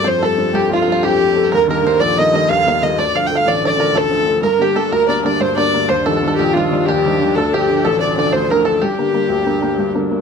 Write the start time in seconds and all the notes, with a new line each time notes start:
Already playing: G2 D3
0.04 F2 C5
0.19 F3 G3 A3 A4
0.24 A4
0.38 F3 G3 A3
0.52 C2 G4
0.69 F3 G3 A3 F4
0.73 F4
0.82 F4
0.87 F3 G3 A3
0.92 F4
1.02 F2 G4
1.20 F3 G3 A3
1.35 F3 G3 A3 A4
1.51 D#2 A#4
1.67 D#3 G3 A#3 A#4
1.83 D#3 G3 A#3 C5
2.00 A#1 D5
2.17 D#3 G3 A#3 D#5
2.33 D#3 G3 A#3 D#5
2.48 D#2 F5
2.66 D#3 G3 A#3 F5
2.83 D#3 G3 A#3 D#5
2.98 D2 D5
3.15 D3 F3 A3 F5
3.26 D3 F3 G5
3.30 A3
3.35 F5
3.46 A1 D5
3.63 D3 F3 A3 D5
3.77 D3 F3 A3 A#4
3.93 D2 A4
4.10 D3 F3 A3
4.25 D3 F3 A3 A4
4.42 G2 D4 A#4
4.59 D3 G3 A#3 G4
4.75 D3 G3 A#3 A4
4.91 D2 A#4
5.07 D3 G3 A#3 D5
5.23 D3 G3 A#3 D5
5.40 G2 C5
5.56 D3 G3 A#3 D5
5.61 D5
5.73 D3 G3 A#3
5.89 D#2 C5
6.06 D#3 F3 G3 A4
6.17 A4
6.22 D#3 F3 G3
6.28 A4
6.35 A#1 G4
6.41 G4
6.53 D#3 F3 G3 F4
6.58 F4
6.72 D#3 F3 G3
6.86 D#2 G4
7.06 D#3 F3 G3
7.21 D#3 F3 G3
7.35 D2 A4
7.53 D3 F3 A3 G4
7.69 D3 F3 A3
7.85 A1 A4
8.00 D3 F3 A3 D5
8.17 D3 F3 A3 D5
8.33 D2 C5
8.50 D3 F3 A3 A#4
8.65 D3 F3 A3 A4
8.82 G2 G4
8.98 D3 G3 A#3
9.13 D3 G3 A#3
9.29 D2
9.46 D3 G3 A#3
9.61 D3 G3 A#3
9.78 G2
9.95 D3 G3 A#3
10.09 D3 G3 A#3